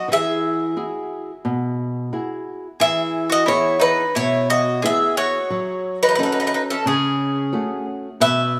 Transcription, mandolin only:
0.12 G#4
2.80 G#4
3.30 F#4
3.46 E4
3.80 D#4
4.15 E4
4.50 F#4
4.82 G#4
5.17 F#4
6.03 D#4
6.11 D#4
6.19 D#4
6.26 D#4
6.33 D#4
6.41 D#4
6.47 D#4
6.55 D#4
6.72 C#4
6.88 C#4
8.21 B4

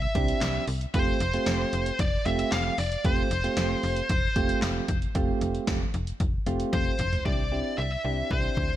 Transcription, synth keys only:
0.15 C4 D4 E4 G4
0.94 A3 C4 F4 G4
1.34 A3 C4 F4 G4
2.26 A3 C4 F4 G4
3.04 A3 C4 F4 G4
3.44 A3 C4 F4 G4
4.36 A3 C4 F4 G4
5.15 A3 C4 F4 G4
6.47 A3 C4 F4 G4
7.25 C4 D4 E4 G4
7.52 C4 D4 E4 G4
8.04 C4 D4 E4 G4

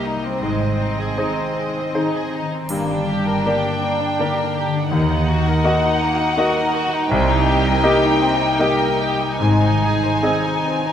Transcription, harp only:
Already playing: C3 G3 A#3 D#4 G4 A#4
0.16 G3
0.42 G#2
0.67 D#3
0.93 C4
1.43 G#4
1.69 D#4
1.95 D#3
2.20 C4
2.45 D#3
2.71 G2
2.96 D3
3.21 D4
3.46 G4
3.71 A#4
3.94 G4
4.19 D3
4.43 D4
4.68 D3
4.92 D#3
5.17 A#3
5.40 D#4
5.64 F#4
5.90 A#4
6.14 F#4
6.38 A#3
6.63 D#4
6.88 A#3
7.12 C3
7.36 G3
7.60 D#4
7.84 G4
8.35 G4
8.61 G3
9.14 G3
9.41 G#2
9.69 D#3
9.96 D#4
10.23 G#4
10.49 C5
10.77 G#4

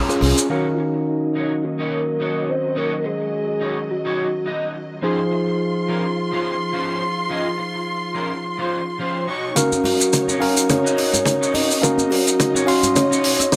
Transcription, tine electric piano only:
0.09 C#4 F4 G#4
0.50 D#3 C#4 F#4 A#4 F5
5.02 F3 D#4 F4 G#4 C5
9.55 C#4 F#4 A#4 F5
10.40 C#4 F#4 A#4 F5
11.81 C#4 F#4 A#4 F5
12.66 C#4 F#4 F5 C6

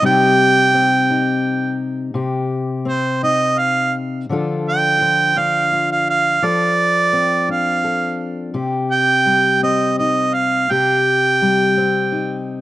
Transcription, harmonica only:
0.06 G5
2.89 C5
3.23 D#5
3.59 F5
4.69 G5
5.38 F5
5.92 F5
6.10 F5
6.46 D5
7.51 F5
8.92 G5
9.63 D#5
9.99 D#5
10.34 F5
10.71 G5

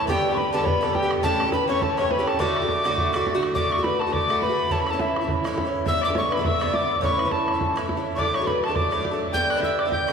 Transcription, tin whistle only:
0.09 G5
0.34 B5 C#6
0.53 A5
0.66 B5
0.95 G5
1.23 A5
1.53 B5
1.69 C#6
1.82 A5
1.98 C#6
2.11 B5
2.28 A5
2.40 D6
3.55 D6
3.71 C#6
3.83 B5
4.00 A5
4.13 D6
4.42 B5
4.72 A5
4.80 B5
4.91 A5
5.01 E5
5.88 E6
6.04 D6
6.18 C#6
6.34 B5
6.46 E6
6.75 D6
7.04 C#6
7.32 A5
8.15 C#6
8.19 D6
8.36 C#6
8.47 B5
8.64 A5
8.76 D6
9.34 G6
9.50 F#6
9.64 E6
9.80 D6
9.92 G6

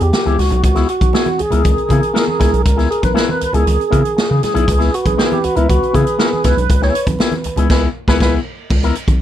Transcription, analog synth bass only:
0.01 E2
0.26 C#2
0.39 C#2
0.51 B1
0.64 C#2
1.01 B1
1.40 C#2
1.52 C#2
1.65 C#2
1.90 C#3
2.41 C#2
2.53 B1
2.66 C#2
3.03 B1
3.42 C#2
3.54 C#2
3.67 C#2
3.93 C#3
4.31 C#3
4.56 B1
4.69 C#2
5.06 B1
5.44 C#2
5.57 C#2
5.70 C#2
5.95 C#3
6.45 C#2
6.57 B1
6.70 C#2
7.07 B1
7.45 C#2
7.57 C#2
7.70 C#2
8.08 C#2
8.21 C#2
8.71 C#2
9.08 B1

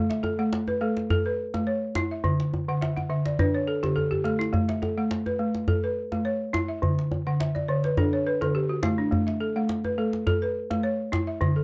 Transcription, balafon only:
Already playing: A3 A4
0.10 E5
0.23 A4
0.39 A3 F#5
0.68 B4
0.81 A3 A4
1.10 A4
1.26 B4
1.54 A3
1.67 C#5
1.96 E4
2.11 E5
2.24 D3
2.69 D3 F#5
2.81 E5
2.96 F#5
3.10 D3 E5
3.26 D5
3.39 D4 B4
3.54 C#5
3.67 A4
3.83 D3 G4
3.96 A4
4.11 G4
4.24 A3 A4
4.39 E4
4.53 A3
4.69 E5
4.82 A4
4.98 A3 F#5
5.26 B4
5.39 A3
5.68 A4
5.84 B4
6.12 A3
6.25 C#5
6.53 E4
6.68 E5
6.82 D3
7.27 D3 F#5
7.40 E5
7.55 D5
7.68 D3 C#5
7.84 B4
7.98 D4 A4
8.13 C#5
8.27 B4
8.41 D3 A4
8.55 G4
8.69 F#4
8.83 A3 E4
8.98 D4
9.11 A3
9.27 E5
9.40 A4
9.56 A3 F#5
9.85 B4
9.98 A3 A4
10.27 A4
10.42 B4
10.70 A3
10.83 C#5
11.12 E4
11.27 E5
11.41 D3
11.56 A4

